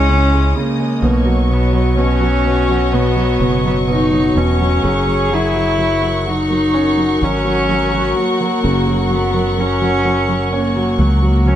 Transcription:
0.00 0.52 C#2 loud
0.00 0.09 C#3 medium
0.00 0.32 G#3 medium
0.00 0.57 C#4 loud
0.00 0.72 E4 loud
0.00 0.99 C#5 medium
0.00 0.99 D#5 medium
0.00 0.99 D#6 medium
0.09 0.55 C#3 medium
0.32 0.78 G#3 medium
0.56 1.02 C#3 medium
0.56 1.53 A#3 loud
0.80 1.02 G#3 soft
1.02 3.36 B1 loud
1.02 1.49 B2 medium
1.02 3.83 F#4 loud
1.02 4.79 C#5 medium
1.02 4.79 D#5 medium
1.02 11.55 C#6 medium
1.25 1.71 F#3 medium
1.50 1.96 B2 medium
1.50 1.98 B3 medium
1.72 2.19 F#3 medium
1.97 2.43 B2 medium
1.97 2.95 C#4 medium
2.21 2.67 F#3 medium
2.45 2.91 B2 soft
2.69 3.15 F#3 soft
2.93 3.39 B2 medium
2.93 3.64 B3 medium
3.16 3.63 F#3 soft
3.39 4.31 F#1 medium
3.39 3.86 B2 medium
3.64 4.10 F#3 medium
3.64 3.76 B3 medium
3.88 4.34 B2 medium
3.88 4.39 D#4 medium
3.88 4.79 F#4 medium
4.11 4.58 F#3 medium
4.35 4.80 E1 medium
4.35 4.82 B2 medium
4.35 5.35 C#4 medium
4.59 4.82 F#3 soft
4.83 7.18 F#1 loud
4.83 5.05 F#3 medium
4.83 6.47 G#4 loud
4.83 11.55 A#4 medium
4.83 11.55 F#5 medium
5.06 5.29 F#3 soft
5.31 5.52 F#3 medium
5.31 6.30 E4 medium
5.54 5.77 F#3 medium
5.79 6.01 F#3 medium
6.02 6.25 F#3 medium
6.26 6.49 F#3 medium
6.26 7.25 D#4 medium
6.51 6.96 F#3 soft
6.74 10.48 C#4 medium
6.74 11.55 F#4 loud
6.97 7.20 F#3 soft
7.21 8.13 G#1 medium
7.21 7.44 F#3 medium
7.21 8.18 C#4 medium
7.45 7.68 F#3 medium
7.69 7.91 F#3 medium
7.92 8.15 F#3 medium
8.17 8.39 F#3 medium
8.17 9.15 A#3 medium
8.41 8.85 F#3 medium
8.63 10.95 F#1 loud
8.63 11.55 C#3 medium
8.87 9.09 F#3 medium
9.11 9.33 F#3 medium
9.11 9.62 B3 medium
9.34 9.57 F#3 medium
9.58 9.80 F#3 medium
9.58 10.53 C#4 loud
9.82 10.04 F#3 medium
10.05 10.27 F#3 medium
10.29 10.75 F#3 soft
10.53 11.20 A#3 medium
10.53 11.55 C#4 medium
10.76 10.98 F#3 medium
10.99 11.55 C#2 loud
10.99 11.21 F#3 medium
11.23 11.45 F#3 medium
11.23 11.49 A#3 medium
11.46 11.55 F#3 medium
11.46 11.55 C#4 medium

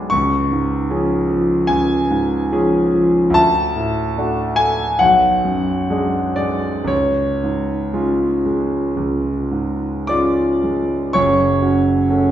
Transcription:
0.00 0.13 B1 medium
0.00 0.13 B2 soft
0.00 0.14 G#3 soft
0.00 0.14 D4 soft
0.00 0.14 G#4 medium
0.00 0.14 D6 loud
0.10 1.65 C#2 medium
0.10 1.68 C#6 loud
0.52 1.13 G#2 soft
0.90 1.25 F3 soft
0.90 1.25 C#4 soft
0.90 1.25 G#4 soft
1.29 1.94 F3 soft
1.67 3.32 C#2 medium
1.67 2.94 G#5 medium
2.10 2.78 G#2 medium
2.52 2.90 F3 medium
2.52 2.90 C#4 soft
2.52 2.91 G#4 medium
2.94 3.36 F3 soft
3.30 4.94 D2 medium
3.34 4.57 A5 loud
3.76 4.41 A2 soft
4.18 4.54 A3 soft
4.18 4.54 D4 soft
4.18 4.55 F#4 soft
4.56 5.01 A3 medium
4.56 5.00 G#5 loud
4.99 6.86 B1 medium
4.99 6.38 F#5 medium
5.45 6.19 F#2 soft
5.90 6.35 G#3 soft
5.90 6.35 D4 soft
5.90 6.35 G#4 soft
6.36 6.90 G#3 soft
6.36 6.89 D5 medium
6.84 8.90 C#2 medium
6.84 10.62 C#5 medium
7.44 8.25 G#2 soft
7.93 8.41 G#3 soft
7.93 8.41 C#4 soft
7.93 8.41 F4 soft
8.46 9.29 G#3 soft
8.97 11.10 C#2 soft
9.51 10.42 G#2 soft
10.07 10.60 G#3 soft
10.07 10.60 C#4 soft
10.07 10.60 F4 soft
10.07 11.10 D5 medium
10.07 11.13 D6 medium
10.63 11.14 G#3 soft
11.13 11.60 F#1 medium
11.13 11.61 F#2 medium
11.13 12.31 C#5 medium
11.13 12.31 C#6 loud
11.62 12.05 C#4 soft
11.62 12.05 F#4 soft
12.09 12.31 A3 soft
12.09 12.31 C#4 soft
12.09 12.31 F#4 soft

